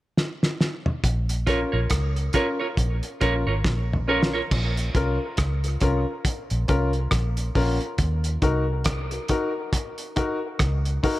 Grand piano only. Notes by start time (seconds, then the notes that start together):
1.47 C#4 F4 A#4
2.34 C#4 F4 A#4
3.21 C#4 F4 A#4
4.07 C#4 F4 A#4
4.95 C#4 F4 A#4
5.64 F4 A#4
5.81 C#4 F4 A#4
6.68 C#4 F4 A#4
7.55 C#4 F4 A#4
8.42 D#4 F#4 A#4
9.12 F#4 A#4
9.29 D#4 F#4 A#4
10.16 D#4 F#4 A#4
11.03 D#4 F#4 A#4